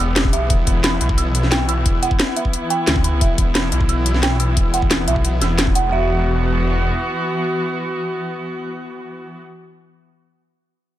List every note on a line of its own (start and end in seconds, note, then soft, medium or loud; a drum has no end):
0.00 0.32 E1 loud
0.00 5.88 E3 medium
0.00 5.88 B3 medium
0.00 0.48 G4 medium
0.16 snare loud
0.16 closed hi-hat medium
0.25 kick loud
0.33 0.49 B1 loud
0.33 0.47 E5 medium
0.33 closed hi-hat medium
0.50 0.66 E1 loud
0.50 5.90 E4 medium
0.50 0.64 E5 medium
0.50 kick loud
0.50 closed hi-hat medium
0.67 0.99 E1 loud
0.67 kick loud
0.67 closed hi-hat medium
0.84 0.93 B5 medium
0.84 snare loud
0.84 closed hi-hat medium
1.01 1.84 B1 medium
1.01 closed hi-hat medium
1.09 kick loud
1.18 1.23 E6 medium
1.18 closed hi-hat medium
1.35 closed hi-hat medium
1.43 snare soft
1.52 1.61 G5 loud
1.52 snare loud
1.52 closed hi-hat medium
1.69 1.83 E6 medium
1.69 closed hi-hat medium
1.86 2.01 E1 medium
1.86 kick loud
1.86 closed hi-hat medium
2.03 2.12 F#5 medium
2.03 closed hi-hat medium
2.11 kick medium
2.20 snare loud
2.20 closed hi-hat medium
2.36 2.51 E5 medium
2.36 closed hi-hat medium
2.45 kick medium
2.53 closed hi-hat medium
2.70 2.80 G5 loud
2.70 closed hi-hat medium
2.87 3.20 D2 medium
2.87 snare loud
2.87 closed hi-hat medium
2.96 kick loud
3.04 3.10 B5 medium
3.04 closed hi-hat medium
3.21 3.37 E1 loud
3.21 3.35 E5 medium
3.21 kick loud
3.21 closed hi-hat medium
3.38 3.71 E1 medium
3.38 kick medium
3.38 closed hi-hat medium
3.55 3.65 B5 medium
3.55 snare loud
3.55 closed hi-hat medium
3.72 4.55 B1 medium
3.72 closed hi-hat medium
3.81 kick medium
3.89 3.95 E6 medium
3.89 closed hi-hat medium
4.06 closed hi-hat medium
4.14 snare soft
4.23 4.32 G5 loud
4.23 snare loud
4.23 closed hi-hat medium
4.40 4.54 E6 medium
4.40 closed hi-hat medium
4.57 4.72 E1 loud
4.57 kick loud
4.57 closed hi-hat medium
4.74 5.06 E1 medium
4.74 4.83 F#5 loud
4.74 closed hi-hat medium
4.82 kick medium
4.91 snare loud
4.91 closed hi-hat medium
5.08 5.40 B1 medium
5.08 5.22 E5 medium
5.08 closed hi-hat medium
5.16 kick medium
5.25 closed hi-hat medium
5.42 5.91 E1 medium
5.42 5.47 E6 medium
5.42 snare soft
5.42 closed hi-hat medium
5.58 snare loud
5.58 closed hi-hat medium
5.67 kick loud
5.75 5.90 F#5 loud
5.75 closed hi-hat loud
5.92 6.90 E1 medium
5.92 9.40 E3 medium
5.92 9.40 B3 medium
5.92 9.40 F#4 medium
5.92 6.08 E5 medium